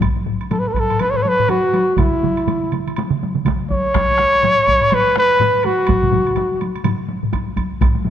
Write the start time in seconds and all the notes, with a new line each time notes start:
0.00 taiko, taiko low-mid, taiko high, high woodblock
0.16 taiko high
0.26 taiko low-mid, taiko high
0.41 taiko high, high woodblock
0.51 A4, taiko low-mid, taiko high, high woodblock
0.59 B4
0.66 A4, taiko high
0.74 B4, taiko, taiko low-mid, taiko high, high woodblock
0.80 A4
0.90 taiko low-mid, taiko high, high woodblock
0.99 B4, taiko high, high woodblock
1.10 C#5, taiko low-mid
1.15 B4, taiko high
1.22 C#5, taiko high
1.28 B4
1.39 taiko low-mid, taiko high
1.49 F#4, taiko low-mid, taiko high, high woodblock
1.65 taiko high
1.74 taiko high, high woodblock
1.89 taiko high
1.95 F#4, taiko, taiko mid, taiko high, high woodblock
2.00 E4
2.14 taiko high
2.23 taiko mid, taiko high
2.37 taiko high, high woodblock
2.47 taiko mid, taiko high, high woodblock
2.64 taiko high
2.72 taiko mid, taiko high, high woodblock
2.87 taiko mid, taiko high, high woodblock
2.96 taiko high, high woodblock
3.11 taiko mid, taiko high
3.23 taiko high
3.36 taiko mid, taiko high
3.45 taiko, taiko mid, taiko high, high woodblock
3.62 taiko high
3.70 C#5, taiko, taiko high
3.87 taiko high
3.94 taiko rim, taiko, taiko high, high woodblock
4.11 taiko high
4.19 taiko rim, taiko high
4.33 taiko high, high woodblock
4.42 taiko low-mid, taiko high, high woodblock
4.59 taiko high
4.66 taiko, taiko low-mid, taiko high, high woodblock
4.81 taiko low-mid, taiko high, high woodblock
4.90 taiko low-mid, taiko high, high woodblock
4.94 B4
5.07 taiko high
5.16 B4, taiko rim, taiko high
5.32 taiko high
5.39 taiko low-mid, taiko high, high woodblock
5.55 taiko high
5.63 F#4, taiko high, high woodblock
5.79 taiko high
5.87 taiko, taiko low-mid, taiko mid, taiko high, high woodblock
6.03 taiko low-mid, taiko mid, taiko high
6.12 taiko low-mid, taiko mid, taiko high
6.27 taiko high, high woodblock
6.36 taiko high, high woodblock
6.52 taiko high
6.61 taiko high, high woodblock
6.76 taiko high, high woodblock
6.84 taiko low-mid, taiko mid, taiko high, high woodblock
7.00 taiko high
7.08 taiko high
7.23 taiko low-mid, taiko mid, taiko high
7.33 taiko, taiko high, high woodblock
7.48 taiko high
7.57 taiko, taiko high, high woodblock
7.72 taiko high
7.81 taiko, taiko low-mid, taiko high, high woodblock
7.95 taiko high
8.05 taiko low-mid, taiko high